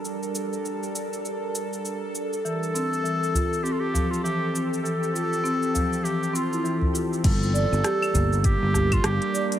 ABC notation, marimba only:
X:1
M:4/4
L:1/16
Q:"Swing 16ths" 1/4=100
K:Gdor
V:1 name="Marimba"
z16 | E,2 C z E, z F z C z F, z E,2 C z | E, z F z C z F, z E, z C E E, z F z | G, z d z G z B, z G,2 G z G, z d z |]